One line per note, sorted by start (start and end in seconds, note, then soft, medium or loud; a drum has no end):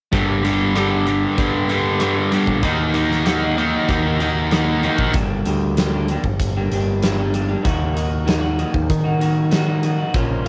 0.12 1.25 G1 medium
0.12 0.74 G2 medium
0.12 0.74 D3 medium
0.12 0.75 G3 medium
0.12 0.76 A#3 medium
0.12 0.76 D4 medium
0.12 0.76 G4 medium
0.12 kick medium
0.12 closed hi-hat medium
0.44 0.73 G2 medium
0.44 0.74 D3 medium
0.44 0.75 G3 medium
0.44 closed hi-hat medium
0.75 1.22 G2 medium
0.75 1.22 D3 medium
0.75 0.92 G3 medium
0.75 0.92 A#3 medium
0.75 0.91 D4 medium
0.75 0.90 G4 medium
0.75 cross-stick medium
0.75 closed hi-hat medium
0.91 1.06 G3 soft
0.91 1.07 A#3 medium
0.91 1.07 D4 medium
0.91 1.07 G4 medium
1.07 1.37 G2 medium
1.07 1.37 D3 medium
1.07 1.38 G3 medium
1.07 muted clean electric guitar stroke soft
1.07 closed hi-hat medium
1.23 1.55 G3 soft
1.23 1.55 A#3 soft
1.23 1.54 D4 medium
1.23 1.53 G4 medium
1.37 2.36 G2 medium
1.37 1.68 G2 medium
1.37 1.69 D3 medium
1.37 1.69 G3 medium
1.37 kick loud
1.37 closed hi-hat medium
1.54 1.68 G3 soft
1.54 1.71 A#3 soft
1.54 1.70 D4 medium
1.54 1.71 G4 medium
1.69 1.99 G2 medium
1.69 1.99 D3 medium
1.69 2.00 G3 medium
1.69 2.01 A#3 medium
1.69 2.00 D4 medium
1.69 2.01 G4 medium
1.69 closed hi-hat medium
2.00 2.47 G2 medium
2.00 2.48 D3 medium
2.00 2.18 G3 medium
2.00 2.18 A#3 medium
2.00 2.16 D4 medium
2.00 2.16 G4 medium
2.00 cross-stick medium
2.00 closed hi-hat medium
2.17 2.30 G3 soft
2.17 2.32 A#3 soft
2.17 2.32 D4 medium
2.17 2.32 G4 medium
2.31 2.62 G2 medium
2.31 2.62 D3 medium
2.31 2.48 G3 medium
2.31 2.48 A#3 medium
2.31 2.47 D4 medium
2.31 2.46 G4 medium
2.31 closed hi-hat medium
2.47 2.61 A#1 medium
2.47 2.62 G3 soft
2.47 2.63 A#3 medium
2.47 2.61 D4 medium
2.47 2.61 G4 medium
2.47 kick medium
2.63 3.76 D#2 medium
2.63 3.24 D#3 medium
2.63 3.25 A#3 medium
2.63 3.26 D#4 medium
2.63 3.26 F#4 medium
2.63 kick medium
2.63 closed hi-hat medium
2.94 3.23 D#3 medium
2.94 3.24 A#3 medium
2.94 3.25 D#4 medium
2.94 closed hi-hat medium
3.11 snare soft
3.25 3.57 D#3 medium
3.25 3.43 A#3 medium
3.25 3.42 D#4 medium
3.25 3.41 F#4 medium
3.25 snare medium
3.25 closed hi-hat medium
3.42 3.57 A#3 medium
3.42 3.57 D#4 medium
3.42 3.57 F#4 medium
3.57 3.87 D#3 medium
3.57 3.89 A#3 medium
3.57 3.89 D#4 medium
3.57 muted clean electric guitar stroke soft
3.57 closed hi-hat soft
3.73 4.06 A#3 soft
3.73 4.05 D#4 medium
3.73 4.04 F#4 medium
3.89 4.87 D#2 medium
3.89 4.19 D#3 medium
3.89 4.19 A#3 medium
3.89 4.20 D#4 medium
3.89 kick medium
3.89 closed hi-hat medium
4.05 4.19 A#3 soft
4.05 4.20 D#4 medium
4.05 4.21 F#4 medium
4.20 4.50 D#3 medium
4.20 4.51 A#3 medium
4.20 4.52 D#4 medium
4.20 4.52 F#4 medium
4.20 closed hi-hat medium
4.51 4.81 D#3 medium
4.51 4.67 A#3 medium
4.51 4.66 D#4 medium
4.51 4.65 F#4 medium
4.51 snare medium
4.51 closed hi-hat medium
4.66 4.82 A#3 soft
4.66 4.83 D#4 medium
4.66 4.83 F#4 medium
4.82 5.12 D#3 medium
4.82 4.98 A#3 medium
4.82 4.98 D#4 medium
4.82 4.97 F#4 medium
4.82 closed hi-hat soft
4.98 5.12 A#1 medium
4.98 5.13 A#3 soft
4.98 5.12 D#4 medium
4.98 5.12 F#4 medium
4.98 kick medium
5.13 5.42 G1 medium
5.13 5.75 G2 medium
5.13 5.76 D3 medium
5.13 5.44 G3 medium
5.13 5.45 A#3 medium
5.13 5.45 D4 medium
5.13 5.46 G4 medium
5.13 kick loud
5.13 closed hi-hat medium
5.45 6.16 D2 medium
5.45 5.76 G3 medium
5.45 5.78 A#3 medium
5.45 5.77 D4 medium
5.45 5.77 G4 medium
5.45 closed hi-hat medium
5.76 6.23 G2 medium
5.76 6.24 D3 medium
5.76 5.94 G3 medium
5.76 5.95 A#3 medium
5.76 5.93 D4 medium
5.76 5.92 G4 medium
5.76 snare loud
5.76 closed hi-hat medium
5.93 6.08 G3 medium
5.93 6.10 A#3 medium
5.93 6.10 D4 medium
5.93 6.11 G4 medium
6.08 6.24 G3 medium
6.08 6.25 A#3 medium
6.08 6.24 D4 medium
6.08 6.24 G4 medium
6.08 closed hi-hat medium
6.24 6.38 G1 medium
6.24 muted clean electric guitar stroke soft
6.24 kick medium
6.40 6.68 G1 medium
6.40 kick medium
6.40 closed hi-hat medium
6.57 6.70 G3 soft
6.57 6.73 A#3 medium
6.57 6.72 D4 medium
6.57 6.73 G4 medium
6.72 7.55 G1 medium
6.72 7.01 G3 medium
6.72 7.03 A#3 medium
6.72 7.02 D4 medium
6.72 7.03 G4 medium
6.72 closed hi-hat medium
7.01 7.48 G2 medium
7.01 7.49 D3 medium
7.01 7.19 G3 medium
7.01 7.19 A#3 medium
7.01 7.18 D4 medium
7.01 7.17 G4 medium
7.01 snare medium
7.01 closed hi-hat medium
7.18 7.32 G3 medium
7.18 7.33 A#3 medium
7.18 7.34 D4 medium
7.18 7.33 G4 medium
7.33 7.50 G3 medium
7.33 7.50 A#3 medium
7.33 7.49 D4 medium
7.33 7.47 G4 medium
7.33 closed hi-hat medium
7.49 7.62 G3 soft
7.49 7.63 A#3 medium
7.49 7.63 D4 medium
7.49 7.62 G4 medium
7.63 8.63 D#2 medium
7.63 7.93 D#3 medium
7.63 7.95 A#3 medium
7.63 7.95 D#4 medium
7.63 7.95 F#4 medium
7.63 kick loud
7.63 closed hi-hat medium
7.94 8.24 D#3 medium
7.94 8.26 A#3 medium
7.94 8.25 D#4 medium
7.94 8.25 F#4 medium
7.94 closed hi-hat medium
8.25 8.56 D#3 medium
8.25 8.43 A#3 medium
8.25 8.41 D#4 medium
8.25 8.40 F#4 medium
8.25 snare loud
8.25 closed hi-hat medium
8.41 8.58 A#3 medium
8.41 8.58 D#4 medium
8.41 8.58 F#4 medium
8.58 9.05 D#3 medium
8.58 8.73 A#3 medium
8.58 8.73 D#4 medium
8.58 8.72 F#4 medium
8.58 closed hi-hat soft
8.74 8.88 D#2 medium
8.74 muted clean electric guitar stroke soft
8.74 kick medium
8.90 10.02 D#3 medium
8.90 kick medium
8.90 closed hi-hat medium
9.04 9.19 A#3 medium
9.04 9.19 D#4 medium
9.04 9.21 F#4 medium
9.19 9.49 D#3 medium
9.19 9.50 A#3 medium
9.19 9.51 D#4 medium
9.19 9.51 F#4 medium
9.19 closed hi-hat medium
9.51 9.81 D#3 medium
9.51 9.67 A#3 medium
9.51 9.66 D#4 medium
9.51 9.65 F#4 medium
9.51 snare loud
9.51 closed hi-hat medium
9.66 9.81 A#3 medium
9.66 9.82 D#4 medium
9.66 9.83 F#4 medium
9.82 10.12 D#3 medium
9.82 9.99 A#3 medium
9.82 9.98 D#4 medium
9.82 9.97 F#4 medium
9.82 closed hi-hat medium
9.98 10.13 A#3 soft
9.98 10.13 D#4 medium
9.98 10.12 F#4 medium
10.14 10.42 A#1 medium
10.14 10.48 A#2 medium
10.14 10.43 F3 medium
10.14 10.44 A#3 medium
10.14 10.44 C#4 medium
10.14 10.45 F4 medium
10.14 kick loud
10.14 closed hi-hat medium
10.44 10.48 F3 medium
10.44 10.48 A#3 medium